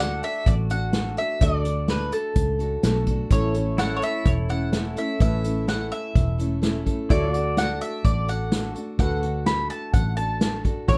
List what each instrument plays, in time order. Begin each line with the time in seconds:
Already playing: fingered electric bass D2, grand piano F#4 A4 D5, pedal steel guitar F#4 A4 D5
0.00 steel-string acoustic guitar A3 D4 F#4 A4, mandolin F#5
0.23 mandolin E5, closed hi-hat
0.46 fingered electric bass A1, mandolin D5, kick, closed hi-hat
0.70 steel-string acoustic guitar D4 F#4 A4, mandolin F#5, closed hi-hat
0.93 steel-string acoustic guitar A3 D4 F#4 A4, snare, closed hi-hat
1.17 steel-string acoustic guitar D4 F#4 A4, mandolin E5, closed hi-hat
1.41 fingered electric bass D2, steel-string acoustic guitar D3 A3 D4 F#4 A4, grand piano F#4 A4 D5, mandolin D5, kick, closed hi-hat
1.64 steel-string acoustic guitar D4 F#4 A4, closed hi-hat
1.88 steel-string acoustic guitar A3 D4 F#4 A4, mandolin B4, snare, closed hi-hat
2.12 mandolin A4, closed hi-hat
2.36 fingered electric bass C#2, kick, closed hi-hat
2.59 steel-string acoustic guitar D4 F#4 A4, closed hi-hat
2.83 fingered electric bass B1, steel-string acoustic guitar A3 D4 F#4 A4, snare, closed hi-hat
3.07 steel-string acoustic guitar D4 F#4 A4, kick, closed hi-hat
3.30 fingered electric bass A1, steel-string acoustic guitar A2 E3 A3 C#4 E4 A4, grand piano E4 A4 C#5, mandolin C#5, kick, closed hi-hat
3.54 steel-string acoustic guitar A3 C#4 E4 A4, closed hi-hat
3.78 steel-string acoustic guitar A3 C#4 E4 A4, pedal steel guitar E4 A4 C#5, mandolin F#5, snare, closed hi-hat
3.96 mandolin C#5
4.02 mandolin E5, closed hi-hat
4.25 fingered electric bass E1, mandolin C#5, kick, closed hi-hat
4.49 steel-string acoustic guitar A3 C#4 E4 A4, mandolin F#5, closed hi-hat
4.73 steel-string acoustic guitar A3 C#4 E4 A4, snare, closed hi-hat
4.96 steel-string acoustic guitar A3 C#4 E4 A4, mandolin E5, closed hi-hat
5.20 fingered electric bass A1, steel-string acoustic guitar A2 E3 A3 C#4 E4 A4, grand piano E4 A4 B4, mandolin E5, kick, closed hi-hat
5.44 steel-string acoustic guitar A3 C#4 E4 A4, closed hi-hat
5.67 steel-string acoustic guitar A3 C#4 E4 A4, mandolin F#5, snare, closed hi-hat
5.92 mandolin E5, closed hi-hat
6.15 fingered electric bass E1, kick, closed hi-hat
6.38 steel-string acoustic guitar A3 C#4 E4 A4, closed hi-hat
6.62 steel-string acoustic guitar A3 C#4 E4 A4, snare, closed hi-hat
6.86 steel-string acoustic guitar A3 C#4 E4 A4, kick, closed hi-hat
7.10 fingered electric bass D2, steel-string acoustic guitar D3 A3 D4 F#4 A4, pedal steel guitar E4 A4 C#5, grand piano F#4 A4 D5, mandolin D5, kick, closed hi-hat
7.33 pedal steel guitar F#4 D5, steel-string acoustic guitar F#4 A4, closed hi-hat
7.37 steel-string acoustic guitar D4
7.57 steel-string acoustic guitar A3 D4 F#4 A4, mandolin F#5, snare, closed hi-hat
7.81 mandolin E5, closed hi-hat
8.05 fingered electric bass A1, mandolin D5, kick, closed hi-hat
8.28 steel-string acoustic guitar D4 F#4 A4, mandolin F#5, closed hi-hat
8.51 steel-string acoustic guitar A3 D4 F#4 A4, snare, closed hi-hat
8.75 steel-string acoustic guitar D4 F#4 A4, closed hi-hat
8.99 fingered electric bass D2, steel-string acoustic guitar D3 A3 D4 F#4 A4, grand piano F#4 A4 B4, mandolin F#5, kick, closed hi-hat
9.22 steel-string acoustic guitar D4 F#4 A4, closed hi-hat
9.46 steel-string acoustic guitar A3 D4 F#4 A4, mandolin B5, snare, closed hi-hat
9.70 mandolin A5, closed hi-hat
9.94 fingered electric bass A1, mandolin F#5, kick, closed hi-hat
10.17 steel-string acoustic guitar D4 F#4 A4, mandolin A5, closed hi-hat
10.40 steel-string acoustic guitar A3 D4 F#4 A4, snare, closed hi-hat
10.64 steel-string acoustic guitar D4 F#4 A4, kick, closed hi-hat
10.88 fingered electric bass A1, steel-string acoustic guitar A2 E3 A3 C#4 E4 A4, grand piano E4 A4 C#5, pedal steel guitar F#4 A4 D5, mandolin C#5, kick, closed hi-hat